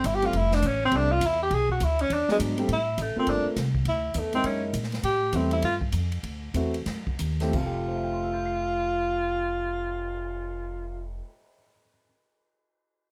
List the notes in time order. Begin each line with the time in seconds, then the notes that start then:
0.04 G1 E4, kick, hi-hat pedal, ride
0.15 G4
0.22 G3 A3 C4 F4, ride
0.26 F4
0.33 F1, kick, ride
0.37 E4
0.52 D4, snare
0.62 A1, kick, hi-hat pedal, ride
0.67 C#4
0.85 C4
0.91 C2 G3 A3 C4 E4, kick, ride
0.96 D4
1.11 F4
1.21 E2, kick, hi-hat pedal, ride
1.26 E4
1.43 G4
1.50 B1 G#4, kick, ride
1.69 F#4, kick
1.80 D2 E4, kick, hi-hat pedal, ride
1.99 C#4, ride
2.10 E2 D4, kick, ride
2.28 F#3 G#3 B3 D4, muted upright bass stroke, snare
2.39 G#2, kick, hi-hat pedal, ride
2.57 G3 A3 C4 G4, ride
2.68 A2, kick, ride
2.73 E4
2.98 A1, kick, hi-hat pedal, ride
3.02 A3
3.16 A3 A#3 C4 F4, muted upright bass stroke
3.27 G1 D4, kick, ride
3.45 muted upright bass stroke
3.56 C2, kick, snare, hi-hat pedal, ride
3.75 kick
3.85 D2 E4, kick, ride
4.14 E2, kick, hi-hat pedal, ride
4.19 A3
4.33 G#3 A#3 C4 D#4 E4, ride
4.44 F#2 C#4, kick, ride
4.73 A#2, kick, hi-hat pedal, ride
4.83 snare
4.92 snare, ride
5.03 A2 G4, kick, ride
5.32 E2 G3 A3 C4 E4, kick, hi-hat pedal, ride
5.51 E4, ride
5.62 G2 F4, kick, ride
5.81 kick
5.92 F2, kick, hi-hat pedal, ride
6.12 ride
6.23 D2, kick, ride
6.54 E2 A3 C4 E4 F#4, kick, hi-hat pedal, ride
6.74 ride
6.86 F#2, kick, snare, ride
7.07 kick
7.19 D#2, kick, hi-hat pedal, ride
7.40 F2 A3 C4 E4 G4, snare, ride
7.48 F3
7.53 F1 A3 F4, kick, crash
7.60 F4
7.66 G4
7.75 cymbal swell
7.88 C5
7.96 E5
8.04 G5
8.13 C6
8.23 E6
8.34 G6
8.46 C7